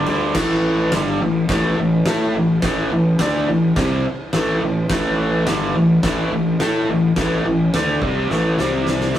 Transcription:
0.06 fingered electric bass D2, overdriven electric guitar G2 D3 G3, ride
0.35 fingered electric bass A1, overdriven electric guitar A2 E3 A3, kick, snare, crash
0.92 fingered electric bass G1, overdriven electric guitar G2 D3 G3, snare, crash
1.21 fingered electric bass A1, overdriven electric guitar A2 E3
1.49 fingered electric bass A1, overdriven electric guitar A2 E3 A3, kick, snare, crash
1.78 fingered electric bass A1, overdriven electric guitar A2 E3
2.05 fingered electric bass A2, overdriven electric guitar A3 E4 A4, snare, crash
2.36 fingered electric bass A1, overdriven electric guitar A2 E3
2.62 fingered electric bass A1, overdriven electric guitar A2 E3 A3, kick, snare, crash
2.92 fingered electric bass A1, overdriven electric guitar A2 E3
3.19 fingered electric bass D2, overdriven electric guitar D3 A3 D4, snare, crash
3.48 fingered electric bass A1, overdriven electric guitar A2 E3
3.76 fingered electric bass C2, overdriven electric guitar C3 G3 C4, kick, snare, crash
4.33 fingered electric bass A1, overdriven electric guitar A2 E3 A3, snare, crash
4.62 fingered electric bass A1, overdriven electric guitar A2 E3
4.89 fingered electric bass A1, overdriven electric guitar A2 E3 A3, kick, snare, crash
5.47 fingered electric bass G1, overdriven electric guitar G2 D3 G3, snare, crash
5.75 fingered electric bass A1, overdriven electric guitar A2 E3
6.03 fingered electric bass A1, overdriven electric guitar A2 E3 A3, kick, snare, crash
6.32 fingered electric bass A1, overdriven electric guitar A2 E3
6.60 fingered electric bass A2, overdriven electric guitar A3 E4 A4, snare, crash
6.89 fingered electric bass A1, overdriven electric guitar A2 E3
7.16 fingered electric bass A1, overdriven electric guitar A2 E3 A3, kick, snare, crash
7.46 fingered electric bass A1, overdriven electric guitar A2 E3
7.74 fingered electric bass D2, overdriven electric guitar D3 A3 D4, snare, crash
8.01 fingered electric bass C2, overdriven electric guitar C3 G3 C4, kick
8.30 fingered electric bass A1, overdriven electric guitar A2 E3 A3, snare
8.59 fingered electric bass C2, overdriven electric guitar C3 G3 C4, snare
8.87 snare
9.01 snare
9.15 overdriven electric guitar D3, snare

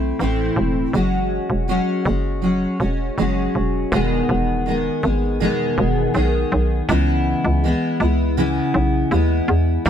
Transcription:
Already playing: fm bass B1, steel-string acoustic guitar A3 C4 E4
0.19 fm bass A1, steel-string acoustic guitar A2 E3 A3 C4 E4
0.56 fm bass E1
0.93 fm bass F#1, steel-string acoustic guitar F#3 G#3 C#4 F#4
1.50 fm bass E1
1.68 steel-string acoustic guitar F#3 G#3 C#4 F#4
2.05 fm bass F#1, steel-string acoustic guitar G#3 C#4 F#4
2.42 steel-string acoustic guitar F#3 G#3 C#4 F#4
2.80 fm bass E1, steel-string acoustic guitar G#3 C#4 F#4
3.18 fm bass F#1, steel-string acoustic guitar F#3 G#3 C#4 F#4
3.55 fm bass E1
3.92 fm bass E1, steel-string acoustic guitar E2 B2 D#3 G#3 B3 G#4
4.29 fm bass E1
4.66 steel-string acoustic guitar D#3 G#3 B3 G#4
5.03 fm bass G#1, steel-string acoustic guitar D#3 G#3 B3 G#4
5.40 steel-string acoustic guitar E2 B2 D#3 G#3 B3 G#4
5.78 fm bass E1
6.14 fm bass B1, steel-string acoustic guitar D#3 G#3 B3 G#4
6.52 fm bass B1
6.89 fm bass C#2, steel-string acoustic guitar C#3 E3 G#3 B3 E4
7.45 fm bass C#2
7.64 steel-string acoustic guitar E3 G#3 B3 E4
8.00 fm bass C#2, steel-string acoustic guitar G#3 B3 E4
8.37 steel-string acoustic guitar C#3 E3 G#3 B3 E4
8.74 fm bass B1
9.11 fm bass D#2, steel-string acoustic guitar G#3 B3 E4
9.48 fm bass E2
9.85 fm bass A1, steel-string acoustic guitar A2 E3 A3 C4 E4

